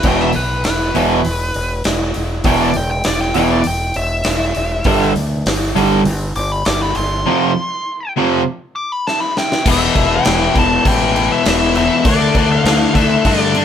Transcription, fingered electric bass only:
0.04 0.31 E1 medium
0.36 0.62 B1 medium
0.65 0.92 E1 medium
0.95 1.22 E1 loud
1.25 1.52 E1 medium
1.55 1.82 E1 medium
1.85 2.12 E1 loud
2.16 2.42 E1 medium
2.44 2.71 E1 medium
2.76 3.03 E1 medium
3.06 3.32 E1 medium
3.36 3.62 E1 loud
3.66 3.93 E1 medium
3.95 4.22 E1 medium
4.27 4.53 E1 loud
4.56 4.83 E1 medium
4.85 5.12 G1 medium
5.15 5.42 D2 medium
5.46 5.73 G1 medium
5.76 6.03 G1 medium
6.06 6.33 G1 loud
6.36 6.63 G1 medium
6.66 6.93 G1 loud
6.97 7.23 G1 medium
9.66 9.87 E1 medium
9.96 10.17 E1 medium
10.27 10.47 E1 medium
10.56 10.77 E1 medium
10.85 11.27 A1 loud
11.46 11.88 E1 loud
12.05 12.26 D2 medium
12.35 12.56 D2 loud
12.65 12.86 D2 loud
12.95 13.16 D2 loud
13.25 13.65 G2 loud

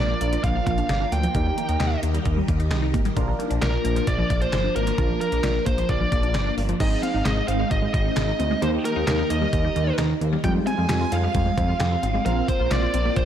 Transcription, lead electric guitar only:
0.00 0.44 D5 medium
0.44 0.66 F5 medium
0.67 1.13 F5 loud
1.12 1.99 G5 loud
3.62 4.09 A#4 medium
4.08 4.39 D5 loud
4.42 4.73 C5 loud
4.76 5.20 A#4 medium
5.21 5.66 A#4 loud
5.66 5.90 C5 medium
5.89 6.53 D5 medium
6.81 7.03 D#5 loud
7.03 7.25 F5 loud
7.25 7.48 D#5 loud
7.48 7.71 F5 loud
7.71 7.93 D#5 loud
7.94 8.64 D#5 loud
8.62 8.68 C5 medium
8.85 9.06 A#4 medium
9.07 9.29 A#4 medium
9.30 9.94 D#5 medium
10.44 10.50 G5 loud
10.67 11.14 G#5 loud
11.12 12.25 F5 loud
12.26 12.47 F5 loud
12.48 12.72 C5 medium
12.71 13.18 D5 medium
13.16 13.25 C5 medium

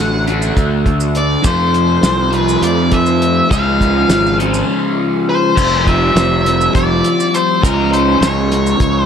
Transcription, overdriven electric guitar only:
0.00 0.25 D3 medium
0.00 0.27 A3 loud
0.00 0.26 D4 medium
0.00 0.26 F#4 medium
0.27 1.43 D3 medium
0.27 1.43 A3 medium
0.27 1.43 D4 medium
0.27 1.44 F#4 medium
1.42 2.30 F2 medium
1.42 2.31 C3 medium
1.42 2.31 F3 loud
1.42 2.30 A3 medium
1.42 2.30 C4 loud
1.42 2.30 F4 medium
2.31 3.49 F2 medium
2.31 3.49 C3 medium
2.31 3.50 F3 medium
2.31 3.48 A3 medium
2.31 3.48 C4 medium
2.31 3.51 F4 medium
3.49 4.36 C#3 medium
3.49 4.37 F3 medium
3.49 4.38 G#3 loud
3.49 4.37 C#4 medium
3.49 4.38 F4 medium
4.38 5.54 C#3 medium
4.38 5.54 F3 medium
4.38 5.55 G#3 medium
4.38 5.55 C#4 medium
4.38 5.56 F4 medium
5.56 7.62 F3 medium
5.56 7.61 G3 medium
5.56 7.61 C4 loud
5.56 7.62 G4 loud
7.61 9.06 C#3 loud
7.61 9.06 F3 medium
7.61 9.06 G#3 medium
7.61 9.06 C#4 loud
7.61 9.06 F4 loud

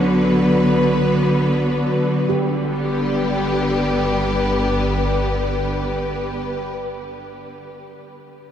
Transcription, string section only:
0.00 2.28 D3 medium
0.00 2.30 F#3 medium
0.00 2.30 B3 medium
0.00 2.30 F#4 medium
0.00 2.30 B4 medium
2.30 6.16 D3 medium
2.45 6.32 G3 medium
2.59 6.46 B3 medium
2.77 6.63 G4 medium
2.91 6.77 B4 medium

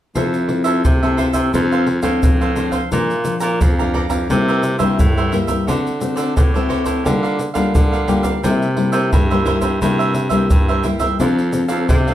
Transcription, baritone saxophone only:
0.16 0.60 F2 medium
0.65 0.80 F2 medium
0.85 1.29 C3 medium
1.34 1.50 C3 medium
1.54 1.98 F2 loud
2.03 2.19 A2 medium
2.23 2.81 A2 medium
2.92 3.36 A#2 medium
3.41 3.57 A#2 medium
3.61 4.05 F2 medium
4.10 4.26 F2 medium
4.30 4.74 C3 loud
4.79 4.94 G2 medium
4.99 5.35 A2 medium
5.68 6.12 D3 medium
6.16 6.32 D3 medium
6.37 6.81 A2 medium
6.85 7.01 A2 medium
7.06 7.50 D3 loud
7.55 7.70 D3 medium
7.75 8.33 D3 medium
8.43 8.88 C3 medium
8.93 9.08 C3 medium
9.13 9.57 G2 medium
9.61 9.77 G2 medium
9.81 10.26 G2 medium
10.30 10.46 G2 medium
10.50 10.86 G2 medium
11.20 11.64 F2 medium
11.69 11.85 F2 medium
11.89 12.14 C3 medium

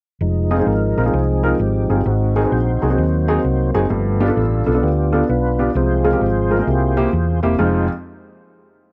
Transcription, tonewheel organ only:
0.21 2.02 F3 soft
0.21 2.02 G#3 soft
0.21 0.67 D#4 medium
0.51 0.57 D#5 medium
0.57 0.59 B4 medium
0.57 0.67 C5 medium
0.67 1.13 D#4 medium
0.67 1.15 A#4 medium
1.13 1.60 C4 medium
1.13 1.60 D#4 medium
1.13 1.61 G#4 medium
1.61 2.03 C4 medium
1.61 2.03 D#4 medium
1.61 2.08 G4 medium
2.06 2.82 C4 medium
2.06 2.51 D#4 medium
2.06 2.34 F#4 medium
2.36 2.47 A#4 medium
2.47 2.52 B4 medium
2.52 3.71 D#4 medium
2.52 3.71 F#4 medium
2.52 3.71 C5 medium
2.82 3.86 F#3 soft
2.82 3.87 A#3 soft
2.82 3.87 C4 medium
3.89 4.24 F3 soft
3.89 4.25 A3 soft
3.89 4.25 B3 medium
4.21 4.29 D5 medium
4.29 4.37 B4 medium
4.37 4.82 D4 medium
4.37 5.25 F4 medium
4.37 4.84 A4 medium
4.82 5.71 B3 medium
4.82 5.29 D4 medium
4.82 5.25 G4 medium
5.30 5.72 D4 medium
5.30 5.72 F4 medium
5.30 5.72 B4 medium
5.75 6.63 F3 medium
5.75 6.64 G#3 soft
5.75 6.64 C4 medium
5.75 6.21 F4 medium
5.75 6.21 G#4 medium
5.75 6.04 C5 medium
6.06 6.22 A#4 medium
6.23 7.40 F4 soft
6.23 7.40 G#4 medium
6.23 7.40 C5 medium
6.67 7.03 A#3 medium
6.67 7.02 E4 soft
6.67 7.02 G4 soft
7.59 7.88 G#3 medium
7.59 7.88 D#4 medium
7.59 7.88 F4 medium
7.59 7.88 C5 medium

